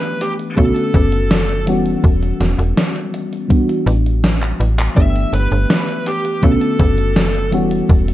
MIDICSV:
0, 0, Header, 1, 5, 480
1, 0, Start_track
1, 0, Tempo, 731707
1, 1338, Time_signature, 4, 2, 24, 8
1, 5339, End_track
2, 0, Start_track
2, 0, Title_t, "Lead electric guitar"
2, 0, Program_c, 0, 29
2, 0, Note_on_c, 0, 71, 91
2, 141, Note_on_c, 0, 67, 87
2, 154, Note_off_c, 0, 71, 0
2, 205, Note_off_c, 0, 67, 0
2, 374, Note_on_c, 0, 69, 87
2, 1070, Note_off_c, 0, 69, 0
2, 3258, Note_on_c, 0, 76, 110
2, 3481, Note_off_c, 0, 76, 0
2, 3500, Note_on_c, 0, 71, 93
2, 3986, Note_on_c, 0, 67, 86
2, 3994, Note_off_c, 0, 71, 0
2, 4206, Note_off_c, 0, 67, 0
2, 4225, Note_on_c, 0, 69, 81
2, 4915, Note_off_c, 0, 69, 0
2, 5339, End_track
3, 0, Start_track
3, 0, Title_t, "FM electric piano"
3, 0, Program_c, 1, 5
3, 0, Control_c, 1, 64, 127
3, 0, Note_on_c, 1, 52, 82
3, 0, Note_on_c, 1, 57, 69
3, 0, Note_on_c, 1, 59, 73
3, 0, Note_on_c, 1, 62, 73
3, 0, Note_on_c, 1, 67, 88
3, 324, Note_off_c, 1, 52, 0
3, 327, Note_off_c, 1, 57, 0
3, 329, Note_off_c, 1, 59, 0
3, 331, Note_off_c, 1, 62, 0
3, 334, Note_off_c, 1, 67, 0
3, 365, Note_on_c, 1, 50, 76
3, 371, Note_on_c, 1, 57, 67
3, 374, Note_on_c, 1, 59, 71
3, 379, Note_on_c, 1, 61, 73
3, 386, Control_c, 1, 64, 0
3, 386, Note_on_c, 1, 66, 90
3, 483, Control_c, 1, 64, 127
3, 1044, Note_off_c, 1, 50, 0
3, 1047, Note_off_c, 1, 57, 0
3, 1048, Note_off_c, 1, 59, 0
3, 1051, Note_off_c, 1, 61, 0
3, 1054, Note_off_c, 1, 66, 0
3, 1090, Note_on_c, 1, 52, 92
3, 1092, Note_on_c, 1, 55, 87
3, 1100, Note_on_c, 1, 59, 83
3, 1104, Note_on_c, 1, 61, 82
3, 1107, Control_c, 1, 64, 0
3, 1109, Note_on_c, 1, 66, 99
3, 1225, Control_c, 1, 64, 127
3, 2246, Note_off_c, 1, 52, 0
3, 2248, Note_off_c, 1, 55, 0
3, 2251, Note_off_c, 1, 59, 0
3, 2254, Note_off_c, 1, 61, 0
3, 2256, Note_off_c, 1, 66, 0
3, 2282, Note_on_c, 1, 52, 77
3, 2290, Note_on_c, 1, 55, 70
3, 2294, Note_on_c, 1, 59, 69
3, 2299, Note_on_c, 1, 62, 69
3, 2303, Note_on_c, 1, 66, 86
3, 2305, Control_c, 1, 64, 0
3, 2405, Control_c, 1, 64, 127
3, 3203, Note_off_c, 1, 52, 0
3, 3206, Note_off_c, 1, 55, 0
3, 3208, Note_off_c, 1, 59, 0
3, 3211, Note_off_c, 1, 62, 0
3, 3213, Note_off_c, 1, 66, 0
3, 3244, Note_on_c, 1, 52, 75
3, 3248, Note_on_c, 1, 57, 72
3, 3256, Note_on_c, 1, 59, 70
3, 3259, Note_on_c, 1, 62, 71
3, 3265, Note_on_c, 1, 67, 87
3, 3266, Control_c, 1, 64, 0
3, 3399, Control_c, 1, 64, 127
3, 4163, Note_off_c, 1, 52, 0
3, 4166, Note_off_c, 1, 57, 0
3, 4169, Note_off_c, 1, 59, 0
3, 4171, Note_off_c, 1, 62, 0
3, 4174, Note_off_c, 1, 67, 0
3, 4206, Note_on_c, 1, 50, 80
3, 4210, Note_on_c, 1, 57, 69
3, 4216, Note_on_c, 1, 59, 73
3, 4221, Note_on_c, 1, 61, 70
3, 4225, Note_on_c, 1, 66, 80
3, 4227, Control_c, 1, 64, 0
3, 4333, Control_c, 1, 64, 127
3, 4884, Note_off_c, 1, 50, 0
3, 4886, Note_off_c, 1, 57, 0
3, 4889, Note_off_c, 1, 59, 0
3, 4892, Note_off_c, 1, 61, 0
3, 4894, Note_off_c, 1, 66, 0
3, 4928, Note_on_c, 1, 52, 96
3, 4932, Note_on_c, 1, 55, 85
3, 4936, Note_on_c, 1, 59, 88
3, 4943, Note_on_c, 1, 61, 86
3, 4946, Note_on_c, 1, 66, 105
3, 4947, Control_c, 1, 64, 0
3, 5069, Control_c, 1, 64, 127
3, 5339, Note_off_c, 1, 52, 0
3, 5339, Note_off_c, 1, 55, 0
3, 5339, Note_off_c, 1, 59, 0
3, 5339, Note_off_c, 1, 61, 0
3, 5339, Note_off_c, 1, 66, 0
3, 5339, End_track
4, 0, Start_track
4, 0, Title_t, "FM bass"
4, 0, Program_c, 2, 39
4, 379, Note_on_c, 2, 35, 95
4, 473, Note_off_c, 2, 35, 0
4, 617, Note_on_c, 2, 30, 101
4, 1097, Note_on_c, 2, 28, 85
4, 1107, Note_off_c, 2, 30, 0
4, 1286, Note_off_c, 2, 28, 0
4, 1336, Note_on_c, 2, 28, 96
4, 1526, Note_off_c, 2, 28, 0
4, 1577, Note_on_c, 2, 28, 83
4, 1672, Note_off_c, 2, 28, 0
4, 1695, Note_on_c, 2, 28, 91
4, 1790, Note_off_c, 2, 28, 0
4, 2534, Note_on_c, 2, 33, 96
4, 2975, Note_off_c, 2, 33, 0
4, 3018, Note_on_c, 2, 33, 82
4, 3206, Note_off_c, 2, 33, 0
4, 3259, Note_on_c, 2, 31, 93
4, 3447, Note_off_c, 2, 31, 0
4, 3495, Note_on_c, 2, 31, 78
4, 3591, Note_off_c, 2, 31, 0
4, 3618, Note_on_c, 2, 31, 89
4, 3712, Note_off_c, 2, 31, 0
4, 4218, Note_on_c, 2, 35, 102
4, 4313, Note_off_c, 2, 35, 0
4, 4457, Note_on_c, 2, 30, 100
4, 4939, Note_on_c, 2, 28, 84
4, 4949, Note_off_c, 2, 30, 0
4, 5127, Note_off_c, 2, 28, 0
4, 5178, Note_on_c, 2, 28, 94
4, 5339, Note_off_c, 2, 28, 0
4, 5339, End_track
5, 0, Start_track
5, 0, Title_t, "Drums"
5, 21, Note_on_c, 9, 42, 37
5, 86, Note_off_c, 9, 42, 0
5, 138, Note_on_c, 9, 42, 83
5, 204, Note_off_c, 9, 42, 0
5, 258, Note_on_c, 9, 42, 40
5, 324, Note_off_c, 9, 42, 0
5, 378, Note_on_c, 9, 36, 109
5, 379, Note_on_c, 9, 42, 56
5, 444, Note_off_c, 9, 36, 0
5, 445, Note_off_c, 9, 42, 0
5, 499, Note_on_c, 9, 42, 40
5, 565, Note_off_c, 9, 42, 0
5, 617, Note_on_c, 9, 42, 97
5, 619, Note_on_c, 9, 36, 99
5, 683, Note_off_c, 9, 42, 0
5, 684, Note_off_c, 9, 36, 0
5, 736, Note_on_c, 9, 42, 38
5, 802, Note_off_c, 9, 42, 0
5, 858, Note_on_c, 9, 38, 111
5, 858, Note_on_c, 9, 42, 62
5, 924, Note_off_c, 9, 38, 0
5, 924, Note_off_c, 9, 42, 0
5, 978, Note_on_c, 9, 42, 39
5, 1043, Note_off_c, 9, 42, 0
5, 1096, Note_on_c, 9, 42, 95
5, 1162, Note_off_c, 9, 42, 0
5, 1218, Note_on_c, 9, 42, 38
5, 1283, Note_off_c, 9, 42, 0
5, 1338, Note_on_c, 9, 36, 110
5, 1338, Note_on_c, 9, 42, 70
5, 1404, Note_off_c, 9, 36, 0
5, 1404, Note_off_c, 9, 42, 0
5, 1460, Note_on_c, 9, 42, 38
5, 1526, Note_off_c, 9, 42, 0
5, 1578, Note_on_c, 9, 38, 58
5, 1578, Note_on_c, 9, 42, 88
5, 1644, Note_off_c, 9, 38, 0
5, 1644, Note_off_c, 9, 42, 0
5, 1701, Note_on_c, 9, 42, 41
5, 1766, Note_off_c, 9, 42, 0
5, 1820, Note_on_c, 9, 38, 108
5, 1820, Note_on_c, 9, 42, 66
5, 1885, Note_off_c, 9, 38, 0
5, 1885, Note_off_c, 9, 42, 0
5, 1941, Note_on_c, 9, 42, 39
5, 2007, Note_off_c, 9, 42, 0
5, 2060, Note_on_c, 9, 42, 89
5, 2125, Note_off_c, 9, 42, 0
5, 2183, Note_on_c, 9, 42, 39
5, 2248, Note_off_c, 9, 42, 0
5, 2298, Note_on_c, 9, 36, 109
5, 2299, Note_on_c, 9, 42, 59
5, 2363, Note_off_c, 9, 36, 0
5, 2365, Note_off_c, 9, 42, 0
5, 2422, Note_on_c, 9, 42, 39
5, 2488, Note_off_c, 9, 42, 0
5, 2540, Note_on_c, 9, 42, 98
5, 2606, Note_off_c, 9, 42, 0
5, 2665, Note_on_c, 9, 42, 36
5, 2731, Note_off_c, 9, 42, 0
5, 2780, Note_on_c, 9, 38, 109
5, 2780, Note_on_c, 9, 42, 66
5, 2846, Note_off_c, 9, 38, 0
5, 2846, Note_off_c, 9, 42, 0
5, 2902, Note_on_c, 9, 39, 70
5, 2902, Note_on_c, 9, 42, 39
5, 2968, Note_off_c, 9, 39, 0
5, 2968, Note_off_c, 9, 42, 0
5, 3022, Note_on_c, 9, 42, 94
5, 3087, Note_off_c, 9, 42, 0
5, 3143, Note_on_c, 9, 39, 96
5, 3143, Note_on_c, 9, 42, 42
5, 3209, Note_off_c, 9, 39, 0
5, 3209, Note_off_c, 9, 42, 0
5, 3258, Note_on_c, 9, 36, 113
5, 3261, Note_on_c, 9, 42, 69
5, 3323, Note_off_c, 9, 36, 0
5, 3327, Note_off_c, 9, 42, 0
5, 3383, Note_on_c, 9, 42, 41
5, 3449, Note_off_c, 9, 42, 0
5, 3500, Note_on_c, 9, 42, 90
5, 3565, Note_off_c, 9, 42, 0
5, 3621, Note_on_c, 9, 42, 42
5, 3686, Note_off_c, 9, 42, 0
5, 3740, Note_on_c, 9, 38, 109
5, 3740, Note_on_c, 9, 42, 63
5, 3805, Note_off_c, 9, 38, 0
5, 3805, Note_off_c, 9, 42, 0
5, 3861, Note_on_c, 9, 42, 38
5, 3927, Note_off_c, 9, 42, 0
5, 3977, Note_on_c, 9, 42, 92
5, 4043, Note_off_c, 9, 42, 0
5, 4099, Note_on_c, 9, 42, 40
5, 4165, Note_off_c, 9, 42, 0
5, 4217, Note_on_c, 9, 42, 65
5, 4218, Note_on_c, 9, 36, 123
5, 4282, Note_off_c, 9, 42, 0
5, 4284, Note_off_c, 9, 36, 0
5, 4338, Note_on_c, 9, 42, 39
5, 4404, Note_off_c, 9, 42, 0
5, 4457, Note_on_c, 9, 42, 94
5, 4458, Note_on_c, 9, 36, 100
5, 4523, Note_off_c, 9, 42, 0
5, 4524, Note_off_c, 9, 36, 0
5, 4579, Note_on_c, 9, 42, 40
5, 4644, Note_off_c, 9, 42, 0
5, 4698, Note_on_c, 9, 38, 117
5, 4698, Note_on_c, 9, 42, 65
5, 4764, Note_off_c, 9, 38, 0
5, 4764, Note_off_c, 9, 42, 0
5, 4819, Note_on_c, 9, 42, 41
5, 4885, Note_off_c, 9, 42, 0
5, 4936, Note_on_c, 9, 42, 102
5, 5002, Note_off_c, 9, 42, 0
5, 5058, Note_on_c, 9, 42, 41
5, 5124, Note_off_c, 9, 42, 0
5, 5179, Note_on_c, 9, 36, 125
5, 5179, Note_on_c, 9, 42, 69
5, 5244, Note_off_c, 9, 36, 0
5, 5245, Note_off_c, 9, 42, 0
5, 5302, Note_on_c, 9, 42, 41
5, 5339, Note_off_c, 9, 42, 0
5, 5339, End_track
0, 0, End_of_file